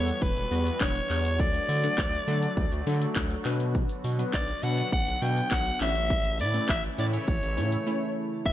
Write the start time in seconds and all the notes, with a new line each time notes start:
Already playing: E2 E3 G3 B3 F#4 A4 C#5
0.07 closed hi-hat, shaker
0.22 E1 B4, kick, shaker
0.36 E1, closed hi-hat, shaker
0.51 E2 E3 G3 B3 F#4, open hi-hat, shaker
0.66 closed hi-hat, shaker
0.81 E1 E3 G3 B3 D4 C#5, kick, clap, shaker
0.95 closed hi-hat, shaker
1.10 E2, clap, open hi-hat, shaker
1.25 closed hi-hat, shaker
1.39 D2 D3 F#3 A3 D4 A4 D5, kick, shaker
1.54 closed hi-hat, shaker
1.69 D3, open hi-hat, shaker
1.83 F#3 A3 D4 A4, closed hi-hat, shaker
1.98 D2, kick, clap, shaker
2.13 closed hi-hat, shaker
2.27 D3 F#3 A3 D4 A4, open hi-hat, shaker
2.43 closed hi-hat, shaker
2.57 D2, kick, shaker
2.72 D2, closed hi-hat, shaker
2.87 D3 F#3 A3 D4 A4, open hi-hat, shaker
3.02 closed hi-hat, shaker
3.16 D2 F#3 A3 D4 A4, kick, clap, shaker
3.31 closed hi-hat, shaker
3.45 B2 D3 F#3 B3 D4 B4, clap, open hi-hat, shaker
3.60 closed hi-hat, shaker
3.75 kick, shaker
3.89 closed hi-hat, shaker
4.04 B2, open hi-hat, shaker
4.19 F#3 B3 D4 B4, closed hi-hat, shaker
4.34 B1 D5, kick, clap, shaker
4.48 closed hi-hat, shaker
4.63 B2 F#3 B3 D4 B4 F#5, open hi-hat, shaker
4.78 closed hi-hat, shaker
4.92 B1 F#5, kick, shaker
5.07 B1, closed hi-hat, shaker
5.22 B2 F#3 B3 D4 B4 G5, open hi-hat, shaker
5.37 closed hi-hat, shaker
5.51 B1 F#3 B3 D4 F#4 F#5, kick, clap, shaker
5.66 closed hi-hat, shaker
5.80 A1 C#3 E3 A3 C#4 E4 C#5 E5, clap, open hi-hat, shaker
5.95 closed hi-hat, shaker
6.10 kick, shaker
6.24 closed hi-hat, shaker
6.40 A2 D5, open hi-hat, shaker
6.54 A3 C#4 E4 B4, closed hi-hat, shaker
6.69 A1 E5, kick, clap, shaker
6.84 closed hi-hat, shaker
6.98 A2 A3 C#4 E4 C#5 D5, open hi-hat, shaker
7.13 C#5, closed hi-hat, shaker
7.28 A1, kick, shaker
7.43 A1, closed hi-hat, shaker
7.57 A2 A3 C#4 E4 C#5, open hi-hat, shaker
7.72 closed hi-hat, shaker
7.87 A3 C#4 E4 C#5
8.45 E1 E3 G3 B3 E4 F#4 B4 E5, kick, shaker